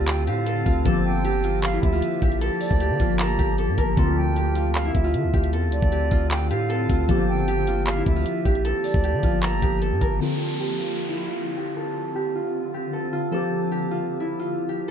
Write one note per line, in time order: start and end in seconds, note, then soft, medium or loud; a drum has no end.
0.00 0.29 D2 loud
0.00 0.81 D3 medium
0.00 0.83 D3 medium
0.00 0.82 C4 medium
0.00 0.83 C4 medium
0.00 0.65 F4 medium
0.00 0.82 F4 medium
0.00 0.27 G4 medium
0.00 0.46 A4 medium
0.07 0.26 G5 medium
0.07 clap loud
0.07 closed hi-hat medium
0.27 0.64 A2 loud
0.27 1.24 G4 medium
0.27 0.82 F5 medium
0.27 closed hi-hat medium
0.46 0.85 A4 loud
0.46 closed hi-hat medium
0.66 0.85 D2 loud
0.66 1.44 F4 medium
0.66 kick loud
0.66 closed hi-hat medium
0.85 1.79 G1 loud
0.85 3.93 F3 medium
0.85 3.94 F3 medium
0.85 3.94 A#3 medium
0.85 3.94 G4 medium
0.85 2.41 A4 loud
0.85 kick loud
0.85 closed hi-hat medium
1.05 1.60 G5 medium
1.25 2.22 G4 medium
1.25 closed hi-hat medium
1.44 1.79 F4 medium
1.44 closed hi-hat medium
1.63 1.82 F5 loud
1.63 clap loud
1.63 closed hi-hat medium
1.73 1.99 E4 medium
1.83 2.02 D2 loud
1.83 2.38 E5 medium
1.83 kick medium
1.83 closed hi-hat medium
1.93 3.00 F4 medium
2.02 closed hi-hat medium
2.22 2.50 A#1 loud
2.22 2.80 G4 medium
2.22 kick loud
2.22 closed hi-hat soft
2.32 closed hi-hat medium
2.41 3.20 A4 loud
2.41 closed hi-hat medium
2.61 3.16 D5 medium
2.61 open hi-hat medium
2.71 2.92 D2 loud
2.71 kick medium
2.80 3.39 G4 medium
2.80 closed hi-hat medium
2.90 3.00 D3 loud
3.00 3.37 G1 loud
3.00 4.55 F4 medium
3.00 kick loud
3.00 closed hi-hat medium
3.19 3.58 A4 medium
3.19 3.56 A#5 medium
3.19 clap loud
3.19 closed hi-hat medium
3.39 3.70 G1 loud
3.39 4.36 G4 medium
3.39 kick medium
3.39 closed hi-hat medium
3.58 3.84 A4 medium
3.58 closed hi-hat medium
3.68 3.77 G2 loud
3.78 3.97 G1 loud
3.78 4.04 A#4 medium
3.78 kick medium
3.78 closed hi-hat medium
3.96 4.91 D2 loud
3.96 7.04 D3 medium
3.96 7.06 D3 medium
3.96 7.06 C4 medium
3.96 7.05 C4 medium
3.96 7.06 F4 loud
3.96 7.06 F4 medium
3.96 5.53 A4 loud
3.96 kick loud
3.96 closed hi-hat medium
4.16 4.71 G5 medium
4.36 5.33 G4 medium
4.36 closed hi-hat medium
4.55 4.91 F4 medium
4.55 closed hi-hat medium
4.75 4.94 F5 medium
4.75 clap loud
4.75 closed hi-hat medium
4.85 5.10 E4 medium
4.95 5.16 D2 loud
4.95 5.50 E5 medium
4.95 kick medium
4.95 closed hi-hat medium
5.04 6.11 F4 medium
5.14 5.25 D3 loud
5.14 closed hi-hat medium
5.24 5.33 D2 loud
5.34 5.55 D2 loud
5.34 5.92 G4 medium
5.34 kick medium
5.34 closed hi-hat soft
5.43 closed hi-hat medium
5.53 5.69 E2 loud
5.53 6.69 A4 medium
5.53 closed hi-hat medium
5.68 5.82 D2 loud
5.72 6.28 D5 medium
5.72 closed hi-hat medium
5.82 6.10 D2 loud
5.82 kick loud
5.92 6.50 G4 medium
5.92 closed hi-hat medium
6.11 6.52 D2 loud
6.11 6.89 F4 medium
6.11 kick loud
6.11 closed hi-hat medium
6.31 6.50 G5 medium
6.31 clap loud
6.31 closed hi-hat medium
6.50 6.88 A2 loud
6.50 7.48 G4 medium
6.50 7.05 F5 medium
6.50 closed hi-hat medium
6.70 7.08 A4 loud
6.70 closed hi-hat medium
6.89 7.08 D2 loud
6.89 7.67 F4 medium
6.89 kick medium
6.89 closed hi-hat medium
7.08 8.03 G1 loud
7.08 10.16 F3 medium
7.08 10.18 F3 medium
7.08 10.18 A#3 medium
7.08 10.17 A#3 medium
7.08 10.18 G4 medium
7.08 8.64 A4 loud
7.08 kick loud
7.08 closed hi-hat medium
7.28 7.83 G5 medium
7.48 8.45 G4 medium
7.48 closed hi-hat medium
7.67 8.03 F4 medium
7.67 closed hi-hat medium
7.87 8.06 F5 loud
7.87 clap loud
7.87 closed hi-hat medium
7.97 8.22 E4 medium
8.06 8.25 D2 loud
8.06 8.62 E5 medium
8.06 kick loud
8.06 closed hi-hat medium
8.16 9.23 F4 medium
8.26 closed hi-hat medium
8.45 8.73 A#1 loud
8.45 9.04 G4 medium
8.45 kick medium
8.45 closed hi-hat soft
8.55 closed hi-hat medium
8.65 9.43 A4 loud
8.65 closed hi-hat medium
8.84 9.39 D5 medium
8.84 open hi-hat medium
8.94 9.15 D2 loud
8.94 kick loud
9.04 9.62 G4 medium
9.04 closed hi-hat medium
9.14 9.23 D3 loud
9.23 9.61 G1 loud
9.23 10.78 F4 medium
9.23 kick loud
9.23 closed hi-hat medium
9.43 9.81 A4 medium
9.43 9.79 A#5 medium
9.43 clap loud
9.43 closed hi-hat medium
9.62 9.93 G1 loud
9.62 10.60 G4 medium
9.62 kick medium
9.62 closed hi-hat medium
9.82 10.07 A4 medium
9.82 closed hi-hat medium
9.92 10.01 G2 loud
10.01 10.20 G1 loud
10.01 10.27 A#4 medium
10.01 kick medium
10.01 closed hi-hat medium
10.19 13.28 D3 medium
10.19 13.29 D3 medium
10.19 13.28 C4 medium
10.19 13.29 C4 medium
10.19 13.29 F4 medium
10.19 11.76 A4 loud
10.19 downlifter medium
10.60 11.57 G4 medium
10.79 11.14 F4 medium
11.08 11.33 E4 medium
11.27 12.35 F4 medium
11.57 12.15 G4 medium
11.76 12.93 A4 medium
12.15 12.74 G4 medium
12.35 13.12 F4 medium
12.74 13.71 G4 medium
12.93 13.32 A4 medium
13.13 13.91 F4 medium
13.31 14.91 F3 medium
13.31 14.91 A#3 medium
13.31 14.91 G4 medium
13.31 14.88 A4 loud
13.71 14.68 G4 medium
13.91 14.26 F4 medium
14.20 14.45 E4 medium
14.39 14.91 F4 medium
14.69 14.91 G4 medium